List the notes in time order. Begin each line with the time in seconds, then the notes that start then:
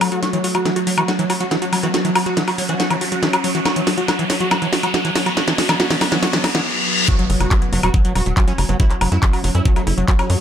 Already playing: F#3 A3, riser
0.01 F#3, open hi-hat, high woodblock
0.12 F#3 F#4, closed hi-hat
0.23 F#3 C#4 F#4, snare, closed hi-hat
0.33 E3 F#3, closed hi-hat
0.44 F#3 F#4, open hi-hat
0.55 F#3 F#4, closed hi-hat, high woodblock
0.65 E3 F#3, snare, closed hi-hat
0.76 F#3 F#4, closed hi-hat
0.87 F#3, open hi-hat
0.98 E3 F#4, closed hi-hat, high woodblock
1.08 F#3 F#4, snare, closed hi-hat
1.19 E3 F#3, closed hi-hat
1.30 F#3 F#4, open hi-hat, high woodblock
1.40 F#3 F#4, closed hi-hat
1.51 E3 F#3, snare, closed hi-hat
1.62 F#3 F#4, closed hi-hat
1.73 F#3, open hi-hat, high woodblock
1.83 E3 B3 F#4, closed hi-hat
1.94 F#3 B3 F#4, snare, closed hi-hat
2.05 E3 F#3, closed hi-hat
2.15 F#3 F#4, open hi-hat, high woodblock
2.26 F#3 F#4, closed hi-hat
2.37 E3 F#3, snare, closed hi-hat
2.48 F#3 F#4, open hi-hat, high woodblock
2.58 F#3, open hi-hat
2.69 E3 C#4 F#4, closed hi-hat
2.80 F#3 F#4, snare, closed hi-hat
2.90 E3 F#3, closed hi-hat, high woodblock
3.01 F#3 F#4, open hi-hat
3.12 F#3 F#4, closed hi-hat
3.23 E3 F#3, snare, closed hi-hat
3.33 F#3 F#4, closed hi-hat, high woodblock
3.44 F#3, open hi-hat
3.55 E3 F#4, closed hi-hat
3.65 F#3 B3 F#4, snare, closed hi-hat, high woodblock
3.76 E3 F#3, closed hi-hat
3.87 F#3 F#4, snare, open hi-hat
3.98 F#3 F#4, closed hi-hat
4.08 F#3 F#4, snare, closed hi-hat, high woodblock
4.19 E3 F#3, closed hi-hat
4.30 F#3 F#4, snare, open hi-hat
4.40 F#3 F#4, closed hi-hat
4.51 F#3 F#4, snare, closed hi-hat, high woodblock
4.62 E3 F#3, closed hi-hat
4.73 F#3 F#4, snare, open hi-hat
4.83 F#3 F#4, closed hi-hat, high woodblock
4.94 F#3 F#4, snare, closed hi-hat
5.05 E3 F#3, closed hi-hat
5.15 F#3 F#4, snare, open hi-hat
5.26 F#3 F#4, closed hi-hat, high woodblock
5.37 F#3 F#4, snare, closed hi-hat
5.48 E3 F#3, snare, closed hi-hat
5.58 F#3 F#4, snare, open hi-hat
5.69 E3 F#3, snare, closed hi-hat, high woodblock
5.80 F#3 F#4, snare, closed hi-hat
5.90 E3 F#3, snare, open hi-hat
6.01 F#3 F#4, snare, open hi-hat, high woodblock
6.12 E3 F#3, snare, closed hi-hat
6.23 F#3 F#4, snare, closed hi-hat, reverse cymbal
6.33 E3 F#3, snare, closed hi-hat
6.44 F#3 F#4, snare, open hi-hat, high woodblock
6.55 E3 F#3, snare, closed hi-hat
7.08 F#3 C#4 F#4, kick, closed hi-hat, impact
7.19 F#3, closed hi-hat
7.30 F#1 F#3, open hi-hat
7.40 F#1 F#3 F#4, closed hi-hat, high woodblock
7.51 F#3, kick, clap, closed hi-hat
7.62 F#3, closed hi-hat
7.73 F#1 F#3, open hi-hat
7.83 E1 F#3 F#4, closed hi-hat, high woodblock
7.94 F#3, kick, closed hi-hat
8.05 F#3, closed hi-hat
8.15 E1 F#3 F#4, open hi-hat, high woodblock
8.26 E1 F#3, closed hi-hat
8.37 F#3, kick, clap, closed hi-hat
8.48 F#3 C#4, closed hi-hat
8.58 F#1 F#3, open hi-hat, high woodblock
8.69 F#1 F#3 B3, closed hi-hat
8.80 F#3 B3 E4, kick, closed hi-hat
8.90 F#3, clap, closed hi-hat
9.01 F#1 F#3, open hi-hat, high woodblock
9.12 F#2 F#3 E4, closed hi-hat
9.23 F#3, kick, clap, closed hi-hat
9.33 F#3, open hi-hat, high woodblock
9.44 F#1 F#3, open hi-hat
9.55 F#2 C#4 E4, closed hi-hat
9.65 F#3, kick, closed hi-hat
9.76 F#3 A3, closed hi-hat, high woodblock
9.87 F#1 E4, open hi-hat
9.98 F#1 F#3, closed hi-hat
10.08 F#3, kick, clap, closed hi-hat
10.19 F#3 C#4, closed hi-hat, high woodblock
10.30 F#2 F#3, open hi-hat